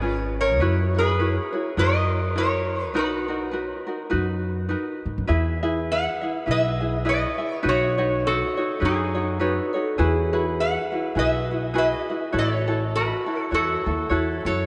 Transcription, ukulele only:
0.02 C#4 F4 G#4 B4
0.60 E4 F#4 B4 C#5
0.95 E4 F#4 C#5
1.19 E4 F#4 B4 C#5
1.53 E4 F#4 C#5
1.77 E4 F#4 A#4 C#5
2.36 E4 F#4 A#4 C#5
2.94 D#4 F#4 A#4 B4
3.28 D#4 F#4 A#4
3.51 D#4 F#4 A#4 B4
3.87 D#4 F#4 A#4
4.10 D#4 F#4 B4
4.69 D#4 F#4 A#4 B4
5.27 E4 G#4 B4 E5
5.63 E4 G#4 B4 E5
6.21 E4 G#4 E5
6.46 E4 G#4 B4 E5
6.80 E4 G#4 E5
7.05 E4 G#4 B4 E5
7.38 E4 G#4 E5
7.63 D#4 F#4 B4 C#5
7.98 D#4 F#4 B4 C#5
8.57 D#4 F#4 C#5
8.80 D#4 F#4 B4 C#5
9.15 D#4 F#4 C#5
9.39 D#4 F#4 B4 C#5
9.74 D#4 F#4 C#5
9.98 E4 F#4 G#4 B4
10.33 E4 F#4 G#4 B4
10.92 E4 F#4 B4
11.15 E4 F#4 G#4 B4
11.51 E4 F#4 B4
11.74 E4 F#4 G#4 B4
12.10 E4 F#4 B4
12.32 E4 F#4 A4 C#5
12.68 E4 F#4 A4 C#5
13.26 E4 F#4 A4
13.51 E4 F#4 A4 C#5
13.86 E4 F#4 A4
14.09 E4 F#4 A4 C#5
14.45 E4 F#4 A4

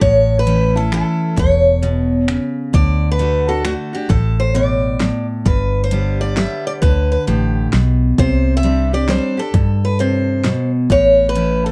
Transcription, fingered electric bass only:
0.01 A1
1.37 E1
2.74 D2
4.10 A1
5.46 G1
6.83 D2
7.28 A1
7.74 B1
8.18 C2
9.54 G2
10.90 A1

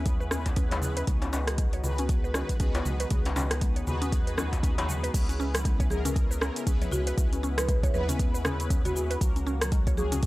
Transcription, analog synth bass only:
Already playing: D#2
1.08 C#2
2.60 C#2
2.85 C#2
3.11 C#2
3.87 D#2
5.14 C#2
6.67 C#2
6.92 C#2
7.18 C#2
7.94 D#2
9.21 C#2

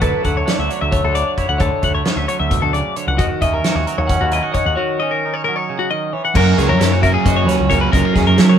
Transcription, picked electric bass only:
0.02 D2
0.25 D2
0.59 D2
0.82 D2
1.04 D2
1.49 D2
1.60 D2
1.83 D2
2.16 D2
2.40 D2
2.63 D2
3.07 C#2
3.19 D#2
3.41 D#2
3.75 D#2
3.98 D#2
4.21 D#2
4.65 D#2
6.36 F#2
6.58 C#2
6.69 F#2
6.80 F#2
7.26 F#2
7.47 D#2
7.60 C#2
7.93 C#2
8.16 D#2
8.27 F#2
8.39 F#3

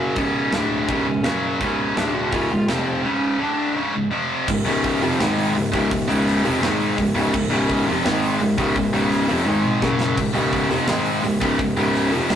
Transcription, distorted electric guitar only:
Already playing: F#2 C#3 F#3
0.15 C#2 G#2 C#3
0.53 D2 A2 D3
0.88 C#2 G#2 C#3
1.06 C#2 G#2
1.24 F#2 C#3 F#3
1.60 C#2 G#2 C#3
1.97 D2 A2 D3
2.33 C#2 G#2 C#3
2.51 C#2 G#2
2.68 F2 C3 F3
3.03 C#2 G#2 C#3
3.39 D2 A2 D3
3.75 C#2 G#2 C#3
3.93 C#2 G#2
4.11 F2 C3 F3
4.48 C#2 G#2
4.65 C#2 G#2 C#3
5.01 F2 C3 F3
5.18 G#2 D#3 G#3
5.54 C#2 G#2
5.72 C#2 G#2 C#3
5.91 C#2 G#2
6.08 C#2 G#2 C#3
6.43 F2 C3 F3
6.61 G#2 D#3 G#3
6.98 C#2 G#2
7.14 C#2 G#2 C#3
7.33 C#2 G#2
7.50 C#2 G#2 C#3
7.86 F2 C3 F3
8.04 G#2 D#3 G#3
8.40 C#2 G#2
8.58 C#2 G#2 C#3
8.76 C#2 G#2
8.93 C#2 G#2 C#3
9.29 F2 C3 F3
9.46 G#2 D#3 G#3
9.81 F#2 C#3 F#3
10.16 C#2 G#2
10.34 C#2 G#2 C#3
10.69 F2 C3 F3
10.87 G#2 D#3 G#3
11.23 C#2 G#2
11.41 C#2 G#2 C#3
11.59 C#2 G#2
11.77 C#2 G#2 C#3
12.11 F2 C3 F3
12.30 G#2 D#3 G#3

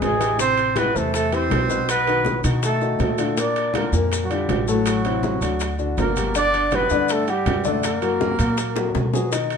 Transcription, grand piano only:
Already playing: G#3 G#4 B4
0.20 E3 E4 G4
0.38 C3 C4 C5
0.75 E3 E4 G4
0.94 C3 C4 C5
1.32 E3 E4 G4
1.70 B2 B3 B4
2.07 D#3 D#4 F#4
2.44 D#3 D#4 F#4
2.81 D#3 D#4 F#4
3.18 D3 D4 F4
3.37 A#2 A#3 A#4
3.74 D3 D4 F4
3.93 A#2 A#3 A#4
4.30 D3 D4 F4
4.68 A2 A3 A4
5.05 C3 C4 E4
5.42 D3 D4 F#4
5.79 D3 D4 F#4
6.16 F#3 F#4 G4
6.35 D3 D4 D5
6.72 F#3 F#4 G4
6.91 D3 D4 D5
7.27 G3 G4 F#5
7.65 D3 D4 D5
8.02 F#3 F#4 A#4
8.39 F#3 F#4 A#4
8.77 F#3 F#4 A#4
9.14 F#3 F#4 G#4
9.32 D#3 D#4 D#5

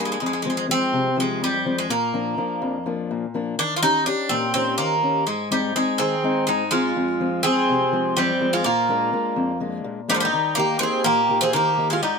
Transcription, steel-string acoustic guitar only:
Already playing: G2 G3 A#3 D4
0.22 F2
0.45 F3 G#3 C4
0.69 F3 G#3 C4
0.93 C3
1.17 F3 G#3 C4
1.41 F2
1.65 F3 G#3 C4
1.90 A#2
2.13 F3 A#3 D4
2.37 F3 A#3 D4
2.62 F2
2.86 F3 A#3 D4
3.11 A#2
3.34 F3 A#3 D4
3.59 D#3
3.83 C#4 D#4 G4
4.07 C#4 D#4 G4
4.31 A#2
4.54 C#4 D#4 G4
4.79 D#3
5.03 C#4 D#4 G4
5.28 G#2
5.51 G#3 C4 D#4
5.75 G#3 C4 D#4
6.00 D#3
6.23 G#3 C4 D#4
6.48 G#2
6.72 G#3 C4 D#4
6.96 F2
7.20 F3 G#3 C4
7.45 F3 G#3 C4
7.69 C3
7.92 F3 G#3 C4
8.17 F2
8.40 F3 G#3 C4
8.66 A#2
8.89 G#3 A#3 D4
9.13 G#3 A#3 D4
9.36 F2
9.60 G#3 A#3 D4
9.84 A#2
10.08 G#3 A#3 D4
10.33 D#3
10.57 A#3 D#4 G4
10.80 A#3 D#4 G4
11.05 A#2
11.29 A#3 D#4 G4
11.54 D#3
11.77 A#3 D#4 G4
12.02 G#2

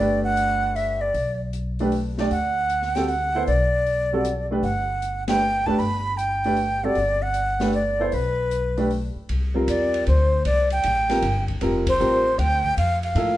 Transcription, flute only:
Already playing: D5
0.24 F#5
0.76 E5
1.01 D5
2.31 F#5
2.96 G5
3.09 F#5
3.47 D5
4.63 F#5
5.28 G5
5.66 A5
5.79 B5
6.17 G5
6.84 D5
7.22 F#5
7.74 D5
8.14 B4
9.69 D5
10.08 C5
10.46 D5
10.72 G5
11.89 C5
12.39 G5
12.78 F5
13.03 F5

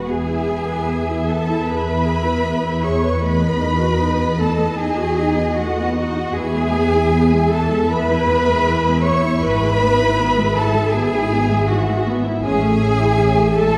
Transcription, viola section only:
0.08 B3
0.28 E4
0.48 G#4
0.68 B4
0.88 G#4
1.10 E4
1.28 B3
1.48 E4
1.67 G#4
1.86 B4
2.06 G#4
2.24 E4
2.43 B3
2.62 E4
2.81 G#4
3.02 B4
3.23 A3
3.41 B3
3.61 D#4
3.79 F#4
3.98 D#4
4.18 B3
4.39 A3
4.60 B3
4.79 D#4
4.97 F#4
5.18 D#4
5.37 B3
5.58 A3
5.78 B3
5.97 D#4
6.17 F#4
6.37 E3 B3
6.56 G#3
6.74 B3
6.94 E4
7.13 B3
7.32 G#3
7.50 E3
7.70 G#3
7.91 B3
8.09 E4
8.29 B3
8.49 G#3
8.68 E3
8.86 G#3
9.05 B3
9.24 E4
9.45 E3
9.64 G#3
9.84 B3
10.01 E4
10.19 B3
10.38 G#3
10.57 E3
10.76 G#3
10.94 B3
11.14 E4
11.33 B3
11.51 G#3
11.70 E3
11.89 G#3
12.07 B3
12.25 E4
12.44 G#3 C#4
12.64 A3
12.82 C#4
13.00 E4
13.17 C#4
13.36 A3
13.58 G#3

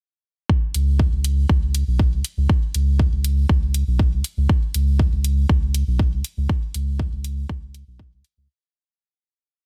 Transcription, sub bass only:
0.74 C#2
1.12 C#2
1.49 C#2
1.87 B1
2.12 C#2
2.37 C#2
2.75 C#2
3.12 C#2
3.49 C#2
3.87 B1
4.12 C#2
4.37 C#2
4.74 C#2
5.12 C#2
5.49 C#2
5.87 B1
6.12 C#2
6.37 C#2
6.75 C#2
7.12 C#2
7.49 C#2
7.87 B1
8.12 C#2
8.37 C#2

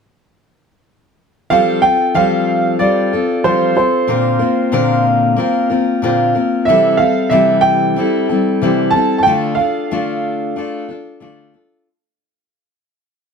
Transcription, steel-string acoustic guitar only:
1.50 F3 G3 C4 F4 A4
1.82 C4 F4 A4
2.14 F3 G3 C4 F4 A4
2.79 G3 C4 F4 A4
3.13 C4 F4 A4
3.44 F3 G3 C4 F4 A4
3.76 C4 F4 A4
4.07 A#2 D3 A#3 C4 F4 A#4
4.39 A#3 C4 F4 A#4
4.72 A#2 D3 A#3 C4 F4 A#4
5.36 A#3 C4 F4 A#4
5.70 A#3 C4 F4 A#4
6.02 A#2 D3 A#3 C4 F4 A#4
6.35 A#3 C4 F4 A#4
6.68 C3 E3 G3 C4 E4 A4
7.00 G3 C4 A4
7.31 C3 E3 G3 C4 E4 A4
7.96 G3 C4 E4 A4
8.29 G3 C4 E4 A4
8.62 C3 E3 G3 C4 E4 A4
8.94 G3 C4 E4 A4
9.26 D3 A3 D4 F4 A4
9.59 D4 F4 A4
9.91 D3 A3 D4 F4 A4
10.56 A3 D4 F4 A4
10.88 D4 F4 A4
11.20 D3 A3 D4 F4 A4
11.54 D4 F4 A4

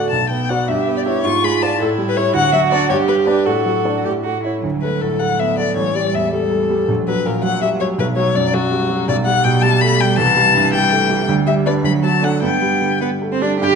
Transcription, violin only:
0.10 A5
0.30 G5
0.49 F#5
0.68 E5
0.97 D5
1.05 C#5
1.24 C#6
1.44 B5
1.62 A5
1.81 A4
2.09 B4
2.17 C#5
2.36 F#5
2.53 E5
2.71 D5
2.89 C#5
3.08 B4
3.26 B4
3.45 A4
4.82 B4
5.01 A4
5.20 F#5
5.39 E5
5.58 D5
5.76 C#5
5.95 D5
6.15 E5
6.33 A4
7.08 B4
7.26 A#4
7.44 F#5
7.62 E5
7.80 C#5
7.99 B4
8.16 C#5
8.35 D5
8.54 F#4
9.09 D5
9.25 F#5
9.44 G5
9.62 A5
9.81 B5
10.00 G5
10.18 A5
10.73 G5
11.47 E5
11.66 D5
11.85 B5
12.04 A5
12.24 F#5
12.43 G5
13.01 B4
13.32 C5
13.43 D5
13.62 G5

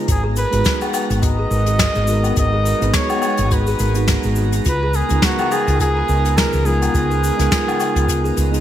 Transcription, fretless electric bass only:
0.08 G#1
0.53 G#1
1.10 G#1
1.51 G#1
1.96 G#1
2.37 G#1
2.82 G#1
3.39 G#1
3.80 G#1
4.25 G#1
4.66 C#2
5.11 C#2
5.68 C#2
6.09 C#2
6.54 C#2
6.95 C#2
7.39 C#2
7.96 C#2
8.38 C#2

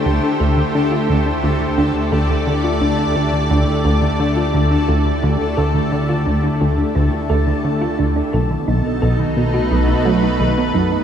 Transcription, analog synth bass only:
0.06 D2
0.40 D2
0.75 D3
1.09 D2
1.43 D2
1.78 D2
2.12 D2
2.47 D3
2.81 D2
3.16 D2
3.50 D2
3.85 D2
4.20 D3
4.54 D2
4.89 D2
5.23 D2
5.57 D2
5.92 D3
6.26 D2
6.61 D2
6.95 D2
7.30 D2
7.64 D3
7.99 D2
8.33 B1
8.68 B1
9.02 B1
9.37 B2
9.71 B1
10.05 F#3
10.40 B1
10.75 F#2

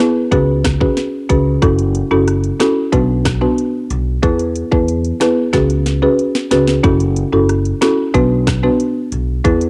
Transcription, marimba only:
0.00 B3 E4 G#4 B4
0.31 C#4 F#4 G#4 B4
0.80 C#4 F#4 G#4 B4
1.29 C#4 F#4 G#4 B4
1.62 C#4 E4 F#4 A4
2.11 C#4 E4 F#4 A4
2.60 C#4 E4 F#4 A4
2.92 B3 D4 F#4 B4
3.41 B3 D4 F#4 B4
4.23 B3 E4 G#4 B4
4.72 B3 E4 G#4 B4
5.21 B3 E4 G#4 B4
5.53 C#4 F#4 G#4 B4
6.02 C#4 F#4 G#4 B4
6.51 C#4 F#4 G#4 B4
6.84 C#4 E4 F#4 A4
7.33 C#4 E4 F#4 A4
7.81 C#4 E4 F#4 A4
8.14 B3 D4 F#4 B4
8.63 B3 D4 F#4 B4
9.44 B3 E4 G#4 B4

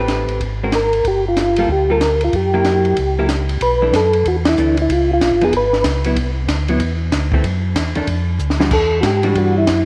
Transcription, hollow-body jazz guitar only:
0.00 A3 C4 G4 B4
0.63 G#3 C4 F#4 A#4
1.58 G3 A#3 F4 A4
1.90 G3 A#3 F4 A4
2.54 F#3 A#3 E4 G4
3.19 F#3 A#3 E4 G4
3.82 E3 A3 D4
4.58 E3 A3 D4
5.41 F3 B3 D#4
6.06 F#3 B3 E4
6.69 F#3 B3 E4
7.34 E3 A3 C4
7.96 D#3 A3 D4
8.59 E3 G3 D4 F#4
9.24 E3 G3 D4 F#4

